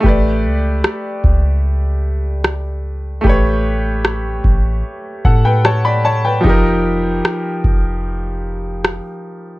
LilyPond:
<<
  \new Staff \with { instrumentName = "Grand piano" } { \time 4/4 \key a \mixolydian \tempo 4 = 75 << { r1 | r2 r8 <a' fis''>16 <b' g''>16 <cis'' a''>16 <d'' b''>16 <cis'' a''>16 <b' g''>16~ | <b' g''>16 r2. r8. | } \\ { <a g' b' d''>1 | <a g' b' cis''>1 | <f ees' g' bes'>1 | } >> }
  \new Staff \with { instrumentName = "808-style bass" } { \clef bass \time 4/4 \key a \mixolydian a,,8 cis,8 r8 cis,2~ cis,8 | a,,4. a,,8 r8 a,4. | f,,4 r8 f,,4.~ f,,16 r8. | }
  \new DrumStaff \with { instrumentName = "Drums" } \drummode { \time 4/4 bd4 ss8 bd8 r4 ss4 | bd4 ss8 bd8 r8 bd8 ss4 | bd4 ss8 bd8 r4 ss4 | }
>>